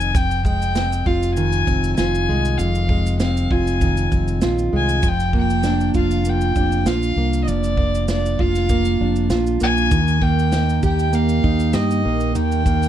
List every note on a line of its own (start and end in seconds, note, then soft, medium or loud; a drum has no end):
0.00 1.02 F1 medium
0.00 0.13 F2 medium
0.00 0.18 D#3 medium
0.00 0.45 C4 medium
0.00 0.18 D#4 medium
0.00 0.18 G#5 loud
0.00 shaker medium
0.15 2.59 F2 medium
0.15 0.45 G5 loud
0.15 kick loud
0.15 shaker medium
0.31 shaker medium
0.45 2.28 G#3 medium
0.45 1.08 G5 loud
0.45 kick medium
0.45 shaker soft
0.62 shaker medium
0.75 1.66 C4 medium
0.75 snare loud
0.75 shaker medium
0.93 shaker medium
1.06 1.63 F1 medium
1.06 1.97 F4 medium
1.06 1.34 F5 medium
1.06 kick medium
1.23 shaker medium
1.35 3.81 D#3 medium
1.35 1.93 G#5 loud
1.35 shaker medium
1.52 shaker medium
1.67 1.96 F1 medium
1.67 3.19 C4 medium
1.67 kick medium
1.67 shaker soft
1.84 shaker soft
1.96 2.26 F1 medium
1.96 3.51 F4 medium
1.96 2.59 G#5 loud
1.96 snare loud
1.96 shaker medium
2.15 shaker medium
2.29 2.57 C2 medium
2.29 2.89 G#3 medium
2.45 shaker medium
2.58 3.47 F1 loud
2.58 5.04 F2 medium
2.58 3.19 F5 loud
2.58 shaker medium
2.75 shaker medium
2.89 4.72 G#3 medium
2.89 kick medium
3.06 shaker medium
3.20 4.10 C4 medium
3.20 3.53 F5 medium
3.20 snare loud
3.20 shaker medium
3.37 shaker soft
3.51 4.08 F1 medium
3.51 4.42 F4 medium
3.51 4.42 G#5 medium
3.51 kick medium
3.67 shaker medium
3.81 5.02 D#3 medium
3.81 kick medium
3.81 shaker medium
3.97 shaker medium
4.11 4.40 F1 medium
4.11 5.10 C4 medium
4.11 kick medium
4.11 shaker soft
4.28 shaker soft
4.42 4.71 A#1 medium
4.42 5.95 F4 medium
4.42 snare loud
4.42 shaker medium
4.59 shaker soft
4.73 5.01 C2 medium
4.73 5.10 G#3 medium
4.77 5.10 G#5 loud
4.89 shaker medium
5.03 5.91 F1 loud
5.03 7.47 F3 medium
5.03 kick loud
5.03 shaker medium
5.08 5.36 G5 loud
5.20 shaker soft
5.33 6.26 A#3 medium
5.33 kick medium
5.37 5.93 G5 loud
5.50 shaker medium
5.63 6.55 D4 medium
5.63 snare loud
5.63 shaker medium
5.81 shaker soft
5.94 6.52 F1 loud
5.94 6.86 F4 medium
5.94 6.31 F5 medium
5.94 kick medium
5.94 shaker soft
6.11 shaker medium
6.25 7.17 A#3 medium
6.25 shaker medium
6.29 6.89 G5 loud
6.41 shaker medium
6.56 6.84 F1 loud
6.56 8.08 D4 medium
6.56 kick medium
6.56 shaker soft
6.72 shaker soft
6.86 7.14 A#1 medium
6.86 8.38 F4 medium
6.86 7.42 F5 loud
6.86 snare loud
6.86 shaker medium
7.03 shaker soft
7.16 7.45 C2 medium
7.16 7.78 A#3 medium
7.33 shaker medium
7.44 8.35 F1 loud
7.44 8.09 D5 medium
7.44 7.49 D#5 medium
7.48 9.91 F3 medium
7.48 shaker medium
7.64 shaker soft
7.77 8.70 A#3 medium
7.77 kick medium
7.95 shaker medium
8.08 9.00 D4 medium
8.08 8.42 D5 medium
8.08 snare loud
8.08 shaker medium
8.26 shaker medium
8.39 8.96 F1 loud
8.39 9.29 F4 medium
8.39 9.31 F5 medium
8.39 kick medium
8.55 snare soft
8.55 shaker medium
8.69 9.61 A#3 medium
8.69 kick medium
8.69 shaker medium
8.85 shaker medium
9.00 9.28 F1 medium
9.00 9.99 D4 medium
9.16 shaker soft
9.30 9.59 A#1 medium
9.30 9.98 F4 medium
9.30 snare loud
9.30 shaker medium
9.47 shaker soft
9.60 9.89 A#1 medium
9.60 10.21 A#3 medium
9.60 10.24 G#5 loud
9.60 shaker medium
9.77 shaker soft
9.91 10.79 D#2 loud
9.91 12.35 D#3 medium
9.91 kick loud
9.91 shaker medium
10.08 shaker soft
10.22 11.12 A#3 medium
10.22 10.84 G5 loud
10.22 kick medium
10.39 shaker soft
10.52 11.43 D#4 medium
10.52 snare loud
10.52 shaker medium
10.69 shaker soft
10.83 11.41 D#2 medium
10.83 11.73 G4 medium
10.83 11.17 G5 loud
10.83 kick medium
10.83 shaker medium
10.99 shaker soft
11.13 12.04 A#3 medium
11.13 11.76 F5 loud
11.13 shaker medium
11.29 shaker medium
11.44 11.72 D#2 loud
11.44 12.88 D#4 medium
11.44 kick medium
11.59 shaker soft
11.73 12.03 G2 medium
11.73 12.88 G4 medium
11.73 12.37 D#5 medium
11.73 snare loud
11.73 shaker medium
11.91 shaker soft
12.05 12.34 A#1 medium
12.05 12.65 A#3 medium
12.20 shaker soft
12.35 12.88 D#2 loud
12.35 12.88 D#3 medium
12.35 12.88 G5 loud
12.35 shaker medium
12.52 shaker medium
12.66 12.88 A#3 medium
12.66 kick medium
12.66 shaker medium
12.83 shaker medium